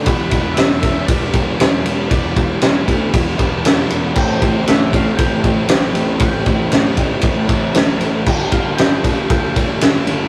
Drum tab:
CC |--------|--------|x-------|--------|
RD |xxxxxxxx|xxxxxxxx|-xxxxxxx|xxxxxxxx|
SD |--o---o-|--o---o-|--o---o-|--o---o-|
BD |oo-ooo--|oo-ooo--|oo-ooo--|oo-ooo--|

CC |x-------|
RD |-xxxxxxx|
SD |--o---o-|
BD |oo-ooo--|